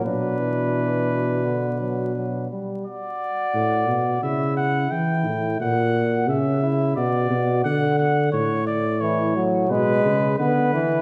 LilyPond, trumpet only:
\new Staff \with { instrumentName = "Trumpet" } { \time 4/4 \key b \minor \tempo 4 = 87 b'2.~ b'8 r8 | d''2 e''8 fis''8 g''4 | fis''4 e''4 d''4 fis''8 fis''8 | cis''8 d''8 cis''8 r8 b'4 b'4 | }